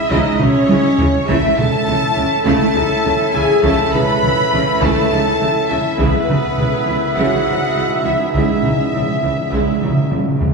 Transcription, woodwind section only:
Already playing: G#3 E4 G#4 E5
1.29 C#4 E4 A4 E5
5.99 B3 E4 G#4 E5

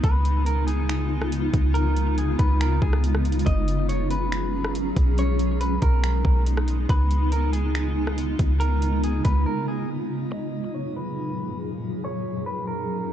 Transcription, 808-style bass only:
0.04 C#2
1.54 C#2
2.39 C#2
2.82 C#2
3.47 F#1
4.96 B1
5.82 B1
6.25 B1
6.89 C#2
8.39 C#2
9.25 C#2

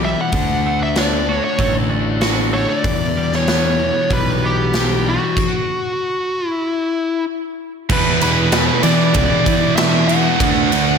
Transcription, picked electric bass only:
Already playing: B1
0.33 D2
1.59 A1
2.84 E2
4.11 B1
7.90 E2
8.83 E3
9.15 C#2
9.47 E3
10.40 D2

